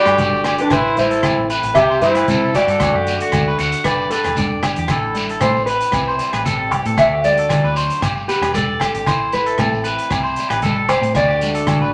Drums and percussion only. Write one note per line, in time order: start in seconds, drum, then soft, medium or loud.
0.06 cross-stick medium
0.06 closed hi-hat soft
0.06 low agogo medium
0.18 kick medium
0.18 closed hi-hat medium
0.18 high conga loud
0.18 shekere medium
0.35 shekere soft
0.44 cross-stick medium
0.44 closed hi-hat soft
0.44 low agogo medium
0.44 shekere medium
0.58 closed hi-hat soft
0.70 kick medium
0.70 cross-stick medium
0.70 closed hi-hat soft
0.70 low agogo medium
0.70 shekere loud
0.87 shekere soft
0.97 closed hi-hat soft
0.97 high conga medium
0.97 shekere medium
1.11 closed hi-hat soft
1.11 shekere soft
1.23 kick medium
1.23 cross-stick medium
1.23 closed hi-hat soft
1.23 high conga medium
1.23 low agogo medium
1.23 shekere medium
1.50 closed hi-hat soft
1.50 shekere medium
1.63 closed hi-hat soft
1.75 kick medium
1.75 cross-stick medium
1.75 closed hi-hat soft
1.75 muted conga soft
1.75 low agogo medium
1.75 shekere medium
1.91 shekere soft
2.02 closed hi-hat soft
2.02 low conga medium
2.02 shekere medium
2.15 cross-stick medium
2.15 closed hi-hat soft
2.15 low agogo medium
2.15 shekere soft
2.28 kick medium
2.28 closed hi-hat soft
2.28 high conga medium
2.28 shekere loud
2.43 shekere soft
2.54 kick medium
2.54 closed hi-hat medium
2.54 low agogo medium
2.54 shekere medium
2.68 closed hi-hat soft
2.68 shekere soft
2.80 kick loud
2.80 cross-stick medium
2.80 closed hi-hat medium
2.80 muted conga soft
2.80 high conga medium
2.80 low agogo medium
2.80 shekere medium
3.07 closed hi-hat soft
3.07 shekere medium
3.20 closed hi-hat soft
3.32 kick medium
3.32 cross-stick medium
3.32 closed hi-hat medium
3.32 high conga medium
3.32 low agogo medium
3.32 shekere loud
3.48 shekere soft
3.59 closed hi-hat medium
3.59 muted conga soft
3.59 shekere medium
3.72 closed hi-hat medium
3.72 shekere soft
3.84 kick medium
3.84 cross-stick medium
3.84 closed hi-hat soft
3.84 muted conga soft
3.84 low agogo medium
3.84 shekere medium
4.00 shekere soft
4.11 closed hi-hat medium
4.11 muted conga soft
4.11 shekere medium
4.24 cross-stick medium
4.24 closed hi-hat soft
4.24 low agogo medium
4.24 shekere soft
4.36 kick medium
4.36 closed hi-hat soft
4.36 high conga medium
4.36 shekere loud
4.63 kick medium
4.63 cross-stick medium
4.63 closed hi-hat soft
4.63 low agogo medium
4.63 shekere medium
4.76 closed hi-hat soft
4.88 kick medium
4.88 cross-stick medium
4.88 closed hi-hat soft
4.88 muted conga soft
4.88 low agogo medium
4.88 shekere medium
5.15 closed hi-hat soft
5.15 high conga medium
5.15 shekere medium
5.29 closed hi-hat soft
5.41 kick medium
5.41 cross-stick medium
5.41 closed hi-hat medium
5.41 high conga medium
5.41 low agogo medium
5.41 shekere medium
5.56 shekere soft
5.67 closed hi-hat soft
5.67 muted conga soft
5.67 shekere medium
5.81 closed hi-hat soft
5.81 shekere soft
5.92 kick medium
5.92 cross-stick medium
5.92 closed hi-hat soft
5.92 muted conga soft
5.92 low agogo medium
5.92 shekere medium
6.08 shekere soft
6.19 closed hi-hat soft
6.19 muted conga soft
6.19 shekere medium
6.33 cross-stick medium
6.33 closed hi-hat soft
6.33 low agogo medium
6.33 shekere soft
6.46 kick medium
6.46 closed hi-hat medium
6.46 high conga medium
6.46 shekere medium
6.71 kick medium
6.71 closed hi-hat medium
6.71 low agogo medium
6.85 closed hi-hat medium
6.98 kick medium
6.98 cross-stick medium
6.98 closed hi-hat soft
6.98 low agogo medium
6.98 shekere medium
7.24 closed hi-hat soft
7.24 high conga medium
7.24 shekere medium
7.37 closed hi-hat medium
7.49 kick medium
7.49 cross-stick medium
7.49 closed hi-hat medium
7.49 high conga medium
7.49 low agogo medium
7.49 shekere medium
7.64 shekere soft
7.76 closed hi-hat medium
7.76 muted conga soft
7.76 shekere medium
7.90 closed hi-hat soft
7.90 shekere soft
8.02 kick medium
8.02 cross-stick medium
8.02 closed hi-hat soft
8.02 low agogo medium
8.02 shekere medium
8.17 shekere soft
8.28 closed hi-hat medium
8.28 muted conga soft
8.28 shekere medium
8.42 cross-stick medium
8.42 closed hi-hat soft
8.42 low agogo medium
8.42 shekere soft
8.54 kick medium
8.54 closed hi-hat soft
8.54 high conga medium
8.54 shekere medium
8.80 kick medium
8.80 cross-stick medium
8.80 closed hi-hat soft
8.80 low agogo medium
8.80 shekere medium
8.95 closed hi-hat soft
9.06 kick medium
9.06 cross-stick medium
9.06 closed hi-hat soft
9.06 muted conga soft
9.06 low agogo medium
9.06 shekere medium
9.32 closed hi-hat soft
9.32 high conga medium
9.32 shekere medium
9.46 closed hi-hat soft
9.58 kick medium
9.58 cross-stick medium
9.58 closed hi-hat soft
9.58 high conga medium
9.58 low agogo medium
9.58 shekere medium
9.73 shekere soft
9.84 closed hi-hat soft
9.84 muted conga soft
9.84 shekere medium
9.99 closed hi-hat soft
9.99 shekere soft
10.11 kick medium
10.11 cross-stick medium
10.11 closed hi-hat soft
10.11 muted conga soft
10.11 low agogo medium
10.11 shekere medium
10.25 shekere soft
10.36 closed hi-hat soft
10.36 muted conga soft
10.36 shekere medium
10.50 cross-stick medium
10.50 closed hi-hat soft
10.50 low agogo medium
10.62 kick medium
10.62 closed hi-hat soft
10.62 high conga medium
10.62 shekere medium
10.89 kick medium
10.89 closed hi-hat medium
10.89 low agogo medium
10.89 shekere medium
11.02 closed hi-hat soft
11.02 shekere soft
11.15 kick medium
11.15 cross-stick medium
11.15 closed hi-hat medium
11.15 low agogo medium
11.15 shekere medium
11.30 shekere soft
11.41 closed hi-hat soft
11.41 high conga medium
11.41 shekere medium
11.55 closed hi-hat medium
11.55 shekere soft
11.67 kick medium
11.67 cross-stick medium
11.67 closed hi-hat soft
11.67 high conga medium
11.67 low agogo medium
11.67 shekere medium
11.83 shekere soft